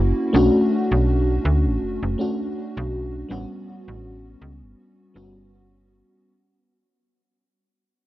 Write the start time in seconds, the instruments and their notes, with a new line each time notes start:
Already playing: fm bass F#1, fm electric piano A#3 C#4 E4 F#4
0.33 fm bass B1, fm electric piano A3 C#4 D4 F#4
0.91 fm bass B1
1.45 fm bass D2
1.66 fm bass A1
1.83 fm bass F#1
2.03 fm bass F#1
2.18 fm electric piano A3 C#4 D4 F#4
2.77 fm bass B1
3.29 fm bass A1, fm electric piano G3 B3 C#4 F#4
3.88 fm bass A1
4.42 fm bass C#2
4.62 fm bass G1
5.14 fm bass G1, fm electric piano G3 B3 C#4 F#4